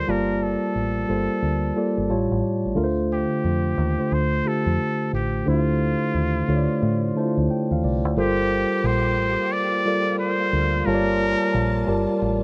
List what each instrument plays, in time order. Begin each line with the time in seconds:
Already playing: tine electric piano G3 F4 A4 A#4 D5, muted trumpet C5
0.08 fingered electric bass G1, tine electric piano G3 A#3 F4 D5 A5, muted trumpet A#4
0.43 muted trumpet A4
0.75 fingered electric bass A1
1.08 fingered electric bass G1, tine electric piano G3 A#3 F4 A4 C5
1.42 fingered electric bass D2
1.76 tine electric piano G3 A#3 F4 A4 D5
1.98 fingered electric bass G1
2.09 fingered electric bass A1, tine electric piano A2 G3 F4 C#5 A5
2.31 fingered electric bass A1
2.44 tine electric piano D5
2.66 fingered electric bass A1
2.75 fingered electric bass D2, tine electric piano D3 A3 F4 A#4
2.84 tine electric piano C5
3.13 muted trumpet G4
3.44 fingered electric bass F2
3.78 fingered electric bass D#2
3.98 tine electric piano D3 A3 F4 C5
4.12 fingered electric bass D2, muted trumpet C5
4.44 tine electric piano D3 A3 F4 G4, muted trumpet A4
4.66 fingered electric bass F2
5.13 fingered electric bass A1, muted trumpet G4
5.46 fingered electric bass D2, tine electric piano D3 A3 E4 C5, muted trumpet F4
5.54 tine electric piano F4
6.14 fingered electric bass D#2
6.48 fingered electric bass D2, tine electric piano D3 A3 F4 C#5
6.56 tine electric piano D5
6.82 fingered electric bass A2
7.16 tine electric piano D3 A3 E4 C5 A5
7.24 tine electric piano F4
7.37 fingered electric bass D2
7.51 tine electric piano G5
7.71 fingered electric bass D#2, tine electric piano F5
7.84 fingered electric bass C2, tine electric piano D5
8.05 fingered electric bass D2
8.16 fingered electric bass G1, tine electric piano G3 F4 A4 A#4 C5, string section A#3 F4 G4, muted trumpet G4
8.84 fingered electric bass A#1, muted trumpet C5
9.18 fingered electric bass A1
9.53 muted trumpet D5
9.85 tine electric piano G3 F4 A4 A#4 D5
10.19 muted trumpet C5
10.53 fingered electric bass D2
10.85 fingered electric bass G1, tine electric piano G3 F4 A#4 C#5 A5, muted trumpet A#4, string section A5
10.95 tine electric piano D5
11.54 fingered electric bass A#1
11.87 fingered electric bass G1, tine electric piano G3 F4 A#4 D5 A5
12.22 fingered electric bass A1